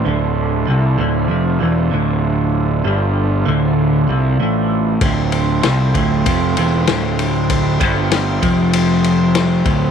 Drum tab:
RD |--------|--------|xxxxxxxx|xxxxxxxx|
SD |--------|--------|--o---o-|--o---o-|
BD |--------|--------|o--oo---|oo-o---o|